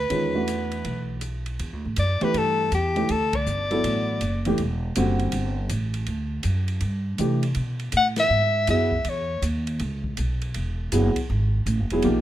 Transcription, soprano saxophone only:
Already playing: B4
2.00 D5
2.24 B4
2.38 A4
2.74 G4
3.11 A4
3.36 D5
7.97 F#5
8.20 E5
8.70 E5
9.09 C#5

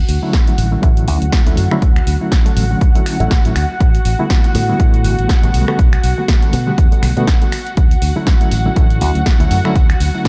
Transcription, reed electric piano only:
0.22 D3 F#3 A3 C#4 E4
0.47 D3 F#3 A3 C#4 E4
0.72 D3 F#3 A3 C#4 E4
0.82 D3 F#3 A3 C#4 E4
1.46 D3 F#3 A3 C#4 E4
1.71 D3 F#3 A3 C#4 E4
2.20 D3 F#3 A3 C#4 E4
2.45 D3 F#3 A3 C#4 A4
2.70 D3 F#3 A3 C#4 F#4
2.95 D3 F#3 A3 C#4 E4
3.20 D3 F#3 A3 C#4 E4
3.45 D3 F#3 A3 C#4 E4
4.19 D3 G3 A3 B3 E4
4.44 D3 G3 A3 B3 E4
4.68 D3 G3 A3 B3 E4
4.79 D3 G3 A3 B3
5.43 D3 G3 A3 B3 F#4
5.68 D3 G3 A3 B3 F#4
6.17 D3 G3 A3 B3 F#4
6.42 D3 G3 A3 B3 A4
6.67 D3 G3 A3 B3 G4
6.92 D3 G3 A3 B3 F#4
7.17 D3 G3 A3 B3 F#4
7.41 D3 G3 A3 B3 F#4
8.16 D3 F#3 A3 C#4 E4
8.41 D3 F#3 A3 C#4 E4
8.65 D3 F#3 A3 C#4 E4
8.75 D3 F#3 A3 C#4 E4
9.40 D3 F#3 A3 C#4 E4
9.64 D3 F#3 A3 C#4 E4
10.14 D3 F#3 A3 C#4 E4

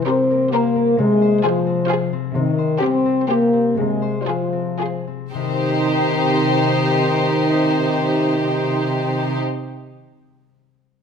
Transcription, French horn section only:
0.07 C4
0.52 A#3
0.99 G#3
1.45 F3
2.35 D#3
2.82 C4
3.28 A#3
3.78 G#3
4.21 G3
4.28 F3
5.35 D#3

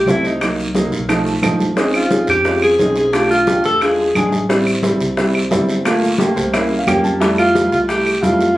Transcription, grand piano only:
0.07 G3 A3 C4
0.41 F#3 A#3 D#4
0.75 F#3 A#3 D#4
1.09 F3 A3 D#4
1.43 F3 A3 D#4
1.77 G#3 C4 C#4 D#4
2.11 G#3 C4 C#4 D#4
2.45 G#3 C4 C#4 F4
2.79 G#3 C4 C#4 D#4
3.13 A3 D4 F4
3.47 A3 D4 G4
3.82 G#3 D4 F4
4.15 G#3 D4 G#4
4.49 G3 C4 E4
4.83 G3 C4 E4
5.17 G3 C4 E4
5.51 G3 C4 E4
5.86 A3 A#3 F4
6.19 A3 A#3 G4
6.36 C5
6.53 A#3 C#4 E4 C#5
6.79 F5
6.87 A#3 C#4 G4 G5
7.04 A5
7.20 G3 A3 E4
7.55 G3 A3 E4
7.89 G3 A3 E4
8.22 G3 A3 E4

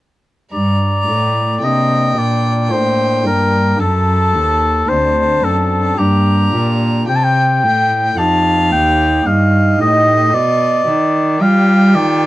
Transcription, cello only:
0.53 G2
1.08 A2
1.63 C3
2.17 A#2
2.71 A2
3.25 G2
3.79 F#2
4.34 D#2
4.88 D2
5.43 F#2
5.98 G2
6.53 A#2
7.09 C3
7.64 A2
8.18 F2
8.72 D#2
9.26 G2
9.79 A2
10.33 B2
10.87 D#3
11.40 G3
11.95 D#3

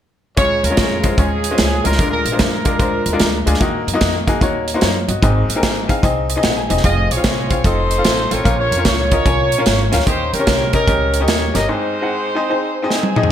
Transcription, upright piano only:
0.37 C#3 G#3 C#4 F4 C#5
0.70 G#3 C#4 F4 C#5
1.03 G#3 C#4 F4 C5
1.17 G#3 C#4 F4 C#5
1.51 G#3 C#4 F4 C5
1.84 G#3 C#4 F4 A#4
1.99 D3 G#3 D4 F4 A#4
2.32 G#3 D4 F4 C5
2.65 G#3 D4 F4 A#4
2.79 G#3 D4 F4 C5
3.12 G#3 D4 F4 A#4
3.46 G#3 D4 F4 G#4
3.60 D#3 A#3 D#4 F#4 D#5
3.94 A#3 D#4 F#4 D#5
4.27 A#3 D#4 F#4 G#4
4.41 A#3 D#4 F#4 C#5
4.74 A#3 D#4 F#4 C5
4.82 F4 C#5
5.08 F#4 D#5
5.22 G#2 C4 D#4 G#4 D#5
5.55 C4 D#4 G#4 A#4
5.88 C4 D#4 G#4 F5
6.02 C4 D#4 G#4 D#5
6.30 D#5
6.36 C4 D#4 G#4 D#5
6.44 F#5
6.57 G#5
6.69 C4 D#4 G#4 D#5
6.83 C4 F4 G#4 F5
7.16 C4 F4 G#4 F5
7.50 C4 F4 G#4 F5
7.64 C4 F4 A4 D#5
7.97 C4 F4 A4 F5
8.30 C4 F4 A4 C5
8.44 A#2 C#4 F4 A#4 F5
8.77 C#4 F4 A#4 C#5
9.11 C#4 F4 A#4 D#5
9.25 C#4 F4 A#4 G#5
9.58 C#4 F4 A#4 F5
9.92 C#4 F4 A#4 F5
10.06 D#3 C#4 G4 A#4 D#5
10.39 C#4 G4 A#4 C#5
10.73 C#4 G4 A#4 D#5
10.87 C#4 G4 A#4 D#5
11.20 C#4 G4 A#4 D#5
11.54 C#4 G4 A#4 D#5
11.68 G#2 C4 D#4 G#4 D#5
12.01 C4 D#4 G#4 F#5
12.35 C4 D#4 G#4 D#5
12.49 C4 D#4 G#4 C5
12.82 C4 D#4 G#4 D#5
13.16 C4 D#4 G#4 D#5

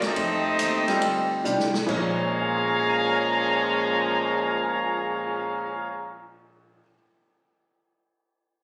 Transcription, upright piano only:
Already playing: F#3 C#4 D#4 F4 A#4
0.88 G3 C4 D#4 F4 A4
1.44 G3 D4 D#4 F4 G4
1.86 A#2 F3 G#3 C#4 D#4 C#5
2.32 D#5
2.39 G#5
2.47 C6
2.56 D#6
2.66 G#6
2.77 C7
2.89 D#7

